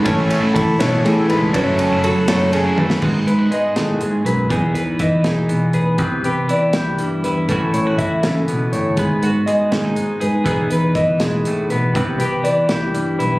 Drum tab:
CC |------------|------------|x-----------|------------|
RD |x-x-x-x-x-x-|x-x-x-x-x---|------------|------------|
HH |------------|------------|--x-x-x-x-x-|x-x-x-x-x-x-|
SD |------o-----|------o----o|------o-----|------o-----|
T1 |------------|----------o-|------------|------------|
BD |o---o-------|o-----------|o-----------|o---o-------|

CC |------------|------------|------------|------------|
RD |------------|------------|------------|------------|
HH |x-x-x-x-x-x-|x-x-x-x-x-x-|x-x-x-x-x-x-|x-x-x-x-x-x-|
SD |------o-----|------o-----|------o-----|------o-----|
T1 |------------|------------|------------|------------|
BD |o-----------|o---o-------|o-----------|o---o-------|

CC |------------|
RD |------------|
HH |x-x-x-x-x-x-|
SD |------o-----|
T1 |------------|
BD |o-----------|